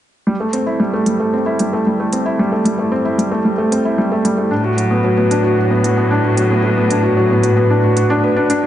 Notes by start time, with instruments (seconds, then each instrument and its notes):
0.27 felt piano G3
0.40 felt piano A3
0.53 felt piano C4, closed hi-hat
0.66 felt piano E4
0.80 felt piano G3
0.93 felt piano A3
1.06 felt piano G3, closed hi-hat
1.20 felt piano A3
1.33 felt piano C4
1.46 felt piano E4
1.59 felt piano G3, closed hi-hat
1.73 felt piano A3
1.87 felt piano G3
2.00 felt piano A3
2.13 felt piano C4, closed hi-hat
2.26 felt piano E4
2.39 felt piano G3
2.52 felt piano A3
2.65 felt piano G3, closed hi-hat
2.79 felt piano A3
2.92 felt piano C4
3.05 felt piano E4
3.18 felt piano G3, closed hi-hat
3.31 felt piano A3
3.45 felt piano G3
3.58 felt piano A3
3.72 felt piano C4, closed hi-hat
3.85 felt piano E4
3.98 felt piano G3
4.12 felt piano A3
4.25 felt piano G3, closed hi-hat
4.38 felt piano A3
4.51 cello section A2, felt piano D4
4.64 felt piano F#4
4.77 felt piano F#3, closed hi-hat
4.91 felt piano B3
5.04 felt piano F#3
5.17 felt piano B3
5.31 felt piano D4, closed hi-hat
5.44 felt piano F#4
5.57 felt piano F#3
5.71 felt piano B3
5.84 felt piano F#3, closed hi-hat
5.97 felt piano B3
6.11 felt piano D4
6.24 felt piano F#4
6.37 felt piano F#3, closed hi-hat
6.51 felt piano B3
6.64 felt piano F#3
6.77 felt piano B3
6.90 felt piano D4, closed hi-hat
7.03 felt piano F#4
7.17 felt piano F#3
7.30 felt piano B3
7.43 felt piano F#3, closed hi-hat
7.57 felt piano B3
7.70 felt piano D4
7.83 felt piano F#4
7.97 felt piano F#4, closed hi-hat
8.10 felt piano D4
8.24 felt piano B4
8.36 felt piano D4
8.50 felt piano D4, closed hi-hat
8.64 felt piano D4